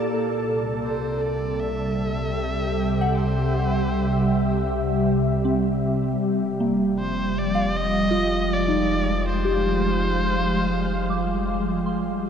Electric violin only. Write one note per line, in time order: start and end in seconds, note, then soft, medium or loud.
0.83 1.23 C5 medium
1.21 1.61 D5 medium
1.59 3.17 E5 loud
3.15 4.68 C5 medium
7.00 7.40 C5 medium
7.39 7.78 D5 medium
7.76 8.55 D#5 loud
8.54 9.29 D5 medium
9.29 11.56 C5 medium